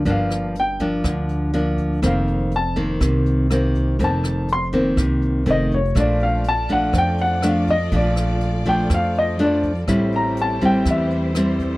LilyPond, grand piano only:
\new Staff \with { instrumentName = "Grand piano" } { \time 4/4 \key f \mixolydian \tempo 4 = 122 f''4 g''8 r2 r8 | f''4 a''8 r2 r8 | a''4 c'''8 r4. ees''8 cis''8 | d''8 f''8 a''8 fis''8 g''8 fis''8 f''8 ees''8 |
d''8 r4 g''8 f''8 ees''8 d''4~ | d''8 bes''8 a''8 g''8 e''4. r8 | }